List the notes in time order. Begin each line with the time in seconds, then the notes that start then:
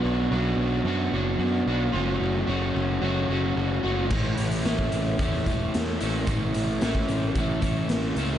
Already playing: B2 F#3 B3 D4 F#4
0.04 B1
0.31 B1 F#3 B3 D4
0.36 F#4
0.57 B1
0.84 F#2 B2 F#3 B3
0.89 D4 F#4
1.12 F#1 D4 F#4
1.16 B3
1.39 F#2
1.67 B1 D4 F#4
1.71 B3
1.93 F#1 F#3 A3 C#4 F#4
2.20 F#1
2.47 F#1 F#3 A3 C#4 F#4
2.75 F#1
3.02 F#1 F#3 A3 C#4 F#4
3.29 F#1 F#4
3.33 A3 C#4
3.56 F#1
3.84 F#1 A3 C#4 F#4
4.10 A1 A2 E3 A3 C#4, kick, crash
4.15 E4
4.37 A1, closed hi-hat
4.51 closed hi-hat
4.64 A1 E3 A3 C#4, snare, closed hi-hat
4.68 E4
4.79 kick
4.92 A1, closed hi-hat
5.19 E2 A2 E3 A3 C#4, kick, closed hi-hat
5.24 E4
5.34 snare
5.46 E1 C#4 E4, kick, closed hi-hat
5.50 A3
5.74 E2, snare, closed hi-hat
6.00 A1 C#4 E4, closed hi-hat
6.05 A3
6.27 A1 A2 E3 A3 C#4, kick, closed hi-hat
6.31 E4
6.54 A1, closed hi-hat
6.81 A1 E3 A3 C#4 E4, snare, closed hi-hat
6.95 kick
7.08 A1, closed hi-hat
7.35 A1 A2 E3 A3, kick, closed hi-hat
7.40 C#4 E4
7.61 A1 C#4 E4, kick, closed hi-hat
7.66 A3
7.88 A1, snare, closed hi-hat
8.16 C#2 C#4 E4, closed hi-hat
8.21 A3